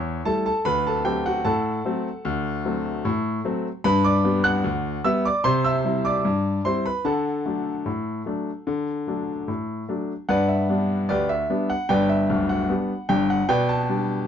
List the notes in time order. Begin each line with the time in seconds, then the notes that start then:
Already playing: E2 C#5 C#6
0.25 G3 A3 E4 A4 A5
0.46 A4 A5
0.65 D2 B4 B5
0.87 A4 A5
1.05 F#3 A3 C4 G4 G5
1.26 F#4 F#5
1.45 A2 A4 F#5 A5
1.85 F#3 A3 C4
2.25 D2
2.65 F#3 A3 C4
3.05 A2
3.45 F#3 A3 C4
3.84 G2 B4 B5
4.04 D5 D6
4.25 G3 B3
4.44 F#5 F#6
4.64 D2
5.04 G3 B3 E5 E6
5.25 D5 D6
5.44 C3 C5 C6
5.64 E5 E6
5.85 G3 C4 E4
6.05 D5 D6
6.25 G2
6.65 G3 C4 E4 C5 C6
6.86 B4 B5
7.05 D3 A4 F#5 A5
7.46 F#3 A3 D4
7.86 A2
8.26 F#3 A3 D4
8.67 D3
9.07 F#3 A3 D4
9.48 A2
9.89 F#3 A3 D4
10.29 G2 B4 D5 F#5
10.48 E5
10.69 G3 B3 D4
11.09 D2 G4 B4 D5
11.29 E5
11.49 G3 B3 D4
11.70 F#5
11.89 G1 G2 B4 D5 G5
12.09 E5
12.29 D1 D2
12.49 F#5
12.69 G3 B3 D4
13.09 G1 G2 G5
13.30 F#5
13.49 B2 B4 D5 G5
13.69 A5
13.89 G3 D4